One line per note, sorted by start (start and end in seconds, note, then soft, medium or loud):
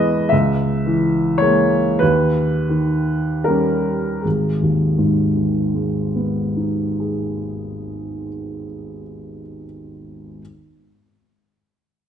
0.00 0.28 E2 soft
0.00 0.11 E3 soft
0.00 0.28 G#3 soft
0.00 0.28 B3 soft
0.00 0.34 B4 medium
0.00 0.30 D#5 medium
0.29 1.97 C#2 soft
0.29 1.39 E5 medium
0.86 1.76 E3 soft
1.38 1.97 G#3 soft
1.38 1.97 A#3 soft
1.38 1.99 C#5 medium
1.99 4.21 D#2 soft
1.99 3.46 B4 medium
2.69 3.96 D#3 soft
3.44 4.20 G3 soft
3.44 4.20 C#4 soft
3.44 4.22 A#4 medium
4.21 8.28 G#1 soft
4.21 6.98 G#4 soft
4.62 8.65 D#2 soft
4.98 9.02 G#2 soft
5.36 9.40 D#3 soft
5.75 9.65 G#3 soft
6.15 9.65 B3 soft
6.57 9.64 D#4 soft
7.00 9.64 G#4 soft